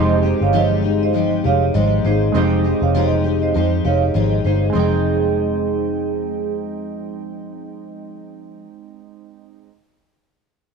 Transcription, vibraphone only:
0.00 0.11 C5 medium
0.00 0.11 D#5 medium
0.42 0.55 C#5 medium
0.42 0.55 F5 medium
0.56 0.72 C5 medium
0.56 0.71 D#5 medium
1.03 1.31 C5 medium
1.03 1.31 D#5 medium
1.46 1.61 C#5 medium
1.46 1.61 F5 medium
1.74 1.91 C5 medium
1.74 1.90 D#5 medium
2.06 2.21 G#4 medium
2.06 2.21 C5 medium
2.36 2.51 C5 medium
2.36 2.51 D#5 medium
2.83 2.95 C#5 soft
2.83 2.95 F5 medium
2.97 3.12 C5 medium
2.97 3.12 D#5 medium
3.42 3.71 C5 medium
3.42 3.70 D#5 medium
3.85 4.01 C#5 soft
3.85 4.01 F5 medium
4.16 4.31 C5 medium
4.16 4.31 D#5 medium
4.46 4.62 G#4 medium
4.46 4.61 C5 medium
4.75 6.51 G#4 medium

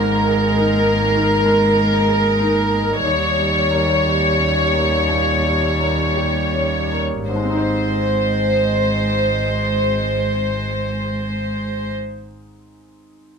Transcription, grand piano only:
0.00 1.11 G#2 soft
0.00 0.16 G#3 soft
0.00 0.45 A#3 soft
0.28 0.74 G#4 soft
0.57 1.03 D#4 soft
0.86 1.33 A#3 soft
1.16 1.63 D#3 soft
1.45 1.94 G#3 soft
1.77 2.26 A#3 soft
2.08 2.58 G#4 soft
2.39 2.90 D#4 soft
2.71 3.03 A#3 soft
3.04 5.05 D#2 soft
3.37 3.91 G3 soft
3.71 4.25 A#3 soft
4.05 4.60 G4 soft
4.38 4.94 C#4 soft
4.73 5.30 A#3 soft
5.09 5.66 A#2 soft
5.44 6.02 G3 soft
5.80 6.38 A#3 soft
6.16 6.76 G4 soft
6.54 7.14 C#4 soft
6.92 7.29 A#3 soft
7.29 11.91 G#2 soft
7.36 11.97 G#3 soft
7.43 12.05 C4 soft
7.50 12.12 D#4 soft
7.57 12.19 C5 soft

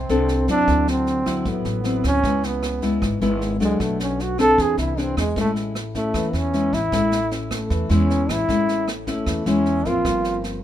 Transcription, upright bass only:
0.09 0.46 C2 loud
0.48 0.66 F2 medium
0.68 1.42 D2 medium
1.46 1.64 A1 medium
1.65 2.02 A1 medium
2.04 2.23 D2 medium
2.24 2.98 C#2 medium
3.02 3.20 G#1 medium
3.22 3.58 G#1 loud
3.61 3.79 C#2 medium
3.80 4.54 B1 medium
4.58 4.77 E2 medium
4.78 5.14 C2 medium
5.17 5.35 E2 medium
5.36 6.10 A1 medium
6.14 6.32 E2 medium
6.33 6.70 E2 loud
6.73 6.91 A1 medium
6.92 7.67 A1 medium
7.70 7.89 E2 medium
7.90 8.26 E2 loud
8.29 8.47 A1 medium
8.49 9.23 A1 medium
9.27 9.45 E2 medium
9.46 9.83 E2 loud
9.85 10.04 A1 medium
10.05 10.63 G1 medium

